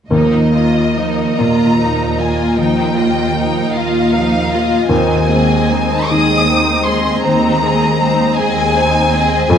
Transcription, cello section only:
0.12 D#2
1.40 D#2
2.57 D#2
3.75 D#2
4.90 D#2
6.11 D#2
7.24 D#2
8.38 D#2
9.50 F2

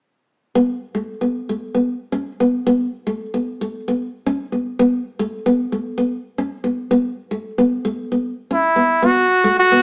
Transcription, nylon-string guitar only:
0.55 B3
0.95 A3
1.21 B3
1.49 A3
1.75 B3
2.12 C#4
2.40 B3
2.67 B3
3.07 A3
3.34 B3
3.61 A3
3.88 B3
4.26 C#4
4.52 B3
4.79 B3
5.19 A3
5.46 B3
5.72 A3
5.98 B3
6.38 C#4
6.64 B3
6.91 B3
7.31 A3
7.58 B3
7.85 A3
8.12 B3
8.51 C#4
8.76 B3
9.02 B3
9.44 A3
9.72 B3

